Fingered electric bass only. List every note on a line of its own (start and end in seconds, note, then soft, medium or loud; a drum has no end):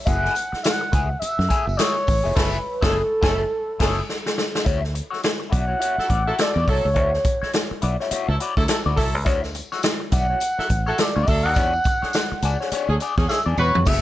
0.07 0.28 F#1 medium
0.53 muted fingered electric bass stroke soft
0.93 1.14 C#2 medium
1.22 muted fingered electric bass stroke medium
1.39 1.47 F#2 loud
1.67 1.76 F#1 loud
2.08 2.21 A1 medium
2.25 2.36 F1 medium
2.37 2.57 F#1 medium
2.83 3.01 F#1 loud
3.23 3.43 F#1 loud
3.80 4.00 F#1 loud
4.66 5.00 D2 medium
5.52 5.74 B1 medium
5.98 muted fingered electric bass stroke medium
6.10 6.31 A1 medium
6.56 6.64 E2 medium
6.68 6.80 C2 medium
6.85 6.96 C#2 medium
6.96 7.17 D2 loud
7.43 muted fingered electric bass stroke soft
7.71 muted fingered electric bass stroke soft
7.83 7.95 B1 medium
8.11 muted fingered electric bass stroke soft
8.28 8.37 C#2 loud
8.57 8.66 D2 medium
8.86 8.98 D2 medium
8.98 9.15 C2 medium
9.15 9.26 C#2 medium
9.26 9.60 D2 medium
10.12 10.33 B1 medium
10.59 muted fingered electric bass stroke soft
10.70 10.91 A1 medium
11.16 11.25 D2 medium
11.28 11.45 D2 medium
11.45 11.56 D#2 medium
11.56 11.77 E2 medium
12.03 muted fingered electric bass stroke soft
12.32 muted fingered electric bass stroke soft
12.43 12.55 C#2 medium
12.72 muted fingered electric bass stroke soft
12.89 12.97 D2 medium
13.18 13.26 E2 loud
13.46 13.55 E2 medium
13.58 13.70 E2 loud
13.75 13.84 F2 medium
13.86 14.02 F#1 loud